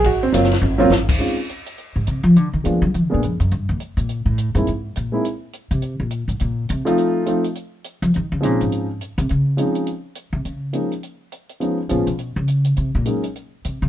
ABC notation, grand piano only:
X:1
M:4/4
L:1/8
Q:"Swing" 1/4=207
K:Abmix
V:1 name="Grand piano"
G C [G,B,CF] z2 [G,B,CF] z2 | [K:Bbm] [A,CDEF] z6 z | z2 [A,B,_C=DF] z2 [A,B,CDA] z2 | z6 z [A,B,CE=E] |
z3 [^G,B,C^D=E] z4 | z6 z [F,=A,CEF]- | [F,=A,CEF]2 [F,A,CEF] z4 z | z2 [F,A,CDE]3 z3 |
z2 [F,A,CDE]2 z4 | [K:Db] z2 [F,A,B,DE] z4 z | [F,A,_CDE] z [F,A,CDF] z4 z | z2 [G,A,B,DE] z4 z |]